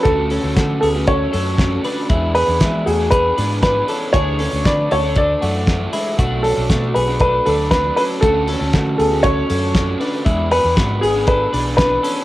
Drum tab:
HH |xoxoxoxo|xoxoxoxo|xoxoxoxo|xoxoxoxo|
SD |--o---o-|--o---o-|--o---o-|--o---o-|
BD |o-o-o-o-|o-o-o-o-|o-o-o-o-|o-o-o-o-|

HH |xoxoxoxo|xoxoxoxo|
SD |--o---o-|--o---o-|
BD |o-o-o-o-|o-o-o-o-|